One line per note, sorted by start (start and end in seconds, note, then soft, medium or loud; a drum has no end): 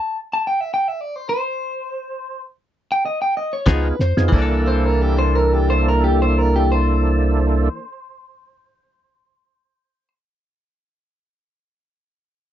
0.00 0.17 A5 loud
0.33 0.45 A5 loud
0.47 0.61 G5 medium
0.61 0.72 E5 loud
0.74 0.88 G5 loud
0.88 1.01 E5 loud
1.01 1.16 D5 medium
1.16 1.28 C5 medium
1.29 2.41 C5 loud
2.92 3.05 G5 loud
3.06 3.21 D#5 loud
3.22 3.35 G5 loud
3.37 3.52 D#5 medium
3.53 3.69 C#5 medium
3.66 3.92 C#2 medium
3.66 3.87 F3 medium
3.66 3.96 B3 medium
3.66 3.87 B3 loud
3.66 3.96 D#4 medium
3.66 3.87 D#4 medium
3.66 3.96 F4 medium
3.66 3.97 G#4 loud
3.66 3.87 G#4 medium
3.66 3.99 B4 loud
3.66 kick medium
3.66 snare loud
3.66 closed hi-hat medium
3.99 4.13 F2 medium
3.99 4.33 C5 loud
3.99 snare medium
4.17 4.29 F2 medium
4.17 4.33 B3 medium
4.17 4.33 D#4 medium
4.17 4.33 F4 medium
4.17 4.33 G#4 loud
4.17 snare medium
4.29 7.69 C2 loud
4.29 7.79 E3 medium
4.29 kick loud
4.29 crash medium
4.33 7.69 A#3 medium
4.33 7.84 A#3 medium
4.33 7.69 D4 medium
4.33 7.69 E4 medium
4.33 7.69 A4 medium
4.38 7.88 D4 medium
4.38 7.92 A4 medium
4.68 4.86 C5 medium
4.86 5.02 A#4 medium
5.02 5.18 G4 medium
5.19 5.34 C5 medium
5.35 5.54 A#4 medium
5.54 5.68 G4 medium
5.70 5.86 C5 medium
5.88 6.02 A#4 medium
6.04 6.20 G4 medium
6.22 6.38 C5 medium
6.38 6.54 A#4 medium
6.56 6.70 G4 medium
6.72 10.08 C5 medium